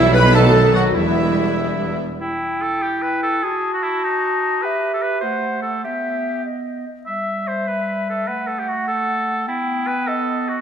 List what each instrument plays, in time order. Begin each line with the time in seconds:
Already playing: double bass section B1, tuba B1, cello section B2, french horn section E3, trombone section E3 G3, viola section G3 E4, clarinet E4, trumpet E4, violin section E4 E5, oboe E4
0.13 french horn section B3, violin section B4 B5, clarinet B4, trumpet B4, oboe B4
0.34 trombone section D#3 F#3, viola section F#3 D#4, french horn section A3, violin section A4 A5, trumpet A4, oboe A4, clarinet A4
0.74 french horn section F#3, clarinet F#4, trumpet F#4, oboe F#4, violin section F#4 F#5
0.94 tuba E1, double bass section E1, cello section E2, french horn section E3, trombone section E3 G3, viola section G3 B3, clarinet E4, oboe E4, trumpet E4, violin section E4 E5
2.20 clarinet E4, oboe E4, flute G5
2.62 oboe A4
2.82 oboe G4
3.02 oboe B4
3.23 oboe A4
3.43 clarinet F#4, oboe G#4, flute A5
3.74 oboe F#4
3.83 oboe E4
4.04 oboe D#4
4.62 clarinet G4, oboe B4, flute E5
4.94 oboe A4
5.03 oboe B4
5.21 clarinet A3, oboe C5, flute F#5
5.62 oboe A4
5.84 clarinet B3, oboe G4, flute E5
6.45 flute D#5
7.06 clarinet G3, oboe E5, flute E5
7.47 oboe C5
7.68 oboe B4
8.09 oboe A4
8.27 clarinet A3, oboe B4, flute F#5
8.47 oboe A4
8.59 oboe G4
8.69 oboe F#4
8.88 oboe A4
9.47 clarinet B3, oboe E4, flute G5
9.87 oboe B4
10.08 oboe A4, flute D#5
10.49 oboe F#4